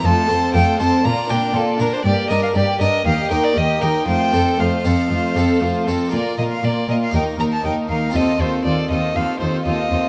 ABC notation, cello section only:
X:1
M:4/4
L:1/8
Q:1/4=119
K:Bb
V:1 name="Cello section" clef=bass
F,, F,, F,, F,, B,, B,, B,, B,, | G,, G,, G,, G,, E,, E,, E,, E,, | F,, F,, F,, F,, F,, F,, F,, F,, | B,, B,, B,, B,, E,, E,, E,, E,, |
E,, E,, E,, E,, E,, E,, E,, E,, |]